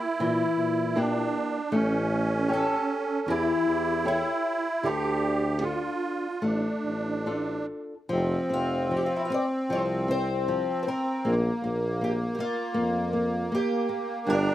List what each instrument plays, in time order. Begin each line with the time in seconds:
Already playing: accordion E4, twelve-string acoustic guitar A#4
0.20 tuba A#2, nylon-string guitar E3
0.58 tuba A#2
0.96 nylon-string guitar A#3 E4 G4, accordion D4
1.72 tuba A1, nylon-string guitar A3, accordion C#4
2.48 nylon-string guitar G4 A4 C#5
2.53 twelve-string acoustic guitar A4
3.27 tuba E2, nylon-string guitar E3, accordion E4, twelve-string acoustic guitar G4
3.66 tuba E2
4.05 twelve-string acoustic guitar E4, nylon-string guitar G4 A4 C#5
4.83 tuba D2, nylon-string guitar D3, twelve-string acoustic guitar D4, accordion G4
5.61 nylon-string guitar D4 F4 A4, accordion F4
6.42 tuba A1, nylon-string guitar A3, accordion D4
6.85 tuba A1
7.26 nylon-string guitar D4 F4 A4
8.09 tuba F1, nylon-string guitar F3, accordion C4
8.49 tuba F1, nylon-string guitar C4
8.54 twelve-string acoustic guitar F4
8.91 nylon-string guitar F3
8.97 twelve-string acoustic guitar G4
9.06 twelve-string acoustic guitar F4
9.16 twelve-string acoustic guitar E4
9.25 twelve-string acoustic guitar F4
9.30 nylon-string guitar C4
9.34 twelve-string acoustic guitar D5
9.70 tuba C2, nylon-string guitar F3, twelve-string acoustic guitar C5
10.08 nylon-string guitar C4, twelve-string acoustic guitar C5
10.48 nylon-string guitar F3
10.83 twelve-string acoustic guitar C5
10.87 nylon-string guitar C4, twelve-string acoustic guitar A#4
11.25 tuba A#1, nylon-string guitar A#3, accordion A#3
11.63 tuba A#1, nylon-string guitar A#3
12.01 nylon-string guitar A#3, twelve-string acoustic guitar G4
12.35 nylon-string guitar A#3, twelve-string acoustic guitar G4
12.40 twelve-string acoustic guitar F4
12.74 tuba F2, nylon-string guitar A#3
13.13 nylon-string guitar A#3
13.52 nylon-string guitar A#3, twelve-string acoustic guitar G4
13.89 nylon-string guitar A#3
14.27 tuba G1, nylon-string guitar G3, accordion D4, twelve-string acoustic guitar A#4